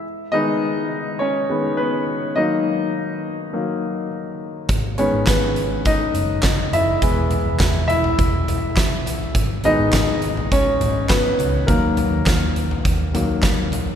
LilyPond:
<<
  \new Staff \with { instrumentName = "Grand piano" } { \time 4/4 \key gis \minor \tempo 4 = 103 r8 <dis' dis''>4. <cis' cis''>4 <b b'>4 | <dis' dis''>2. r4 | r8 <cis' cis''>8 <b b'>4 <dis' dis''>4. <e' e''>8~ | <e' e''>4 r8 <e' e''>2 r8 |
r8 <dis' dis''>4. <cis' cis''>4 <b b'>4 | <ais ais'>2. r4 | }
  \new Staff \with { instrumentName = "Grand piano" } { \clef bass \time 4/4 \key gis \minor r8 <dis gis b>4. r8 <dis gis b>8 r4 | <dis fis ais>2 <dis fis ais>8 r4. | r8 <dis gis b>8 r2. | <e gis b>1 |
r8 <dis gis b>4. r2 | <dis fis>8 r2 <dis fis ais>8 r4 | }
  \new Staff \with { instrumentName = "Fingered electric bass" } { \clef bass \time 4/4 \key gis \minor r1 | r1 | gis,,8. gis,,16 gis,,4. fis,,4 fis,,8 | e,,8. e,,16 e,,4 e,,4. r8 |
gis,,8. gis,,16 gis,,4. gis,,4 cis,8 | dis,8. dis,16 dis,4 dis,4. r8 | }
  \new DrumStaff \with { instrumentName = "Drums" } \drummode { \time 4/4 r4 r4 r4 r4 | r4 r4 r4 r4 | <hh bd>8 hh8 <hc hh bd sn>8 hh8 <hh bd>8 hh8 <hc hh bd sn>8 hh8 | <hh bd>8 <hh tomfh>8 <hc hh bd sn>8 hh16 tomfh16 <hh bd>8 <hh tomfh>8 <hc hh bd sn>8 <hh sn tomfh>8 |
<hh bd>8 <hh tomfh>8 <hc hh bd sn>8 hh16 tomfh16 <hh bd>8 <hh tomfh>8 <hc hh bd sn>8 <hh tomfh>8 | <hh bd>8 <hh tomfh>8 <hc hh bd sn>8 hh16 tomfh16 <hh bd>8 <hh tomfh>8 <hc hh bd sn>8 <hh tomfh>8 | }
>>